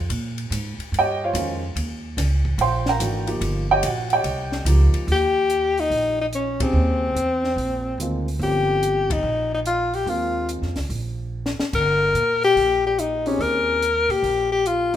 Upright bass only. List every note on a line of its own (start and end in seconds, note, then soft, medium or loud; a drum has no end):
0.10 0.50 A#2 medium
0.50 0.77 G#2 medium
0.78 muted upright bass stroke soft
0.92 1.33 G2 medium
1.33 1.74 F2 medium
1.75 2.16 D#2 medium
2.17 2.58 C#2 medium
2.58 2.99 A#1 medium
3.00 3.40 G#1 medium
3.41 3.82 G1 medium
3.82 4.23 A#1 medium
4.24 4.65 C2 medium
4.65 4.92 C#2 medium
4.94 muted upright bass stroke soft
5.07 5.87 D#2 medium
5.90 6.70 A#1 medium
6.73 7.12 D#2 medium
7.15 7.54 E2 medium
7.56 7.95 A#1 medium
7.98 8.37 D2 medium
8.39 9.19 G1 medium
9.23 10.03 A#1 medium
10.06 10.58 D#2 medium
10.62 10.75 F2 medium
10.77 10.89 C#2 medium
10.89 11.55 A#1 medium
11.59 muted upright bass stroke soft
11.73 12.12 G1 medium
12.14 12.53 A#2 medium
12.56 13.36 A#1 medium
13.39 14.05 D#2 medium
14.09 14.22 A#2 medium
14.22 14.96 A#1 medium